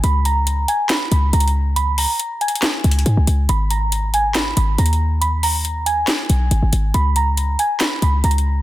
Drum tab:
HH |x--x--x--x--x--x--xxx---|x--o--x--xxxx--xxxx--x--|x--x--x--x--x--x--xxx---|x--o--x--x--x--x--x--x--|
CP |------------x-----------|------------x-----------|------------x-----------|------------x-----------|
SD |------------o-----------|------------o-----------|------------o-----------|------------o-----------|

HH |x--x--x--x--x--x--xxx---|
CP |------------x-----------|
SD |------------o-----------|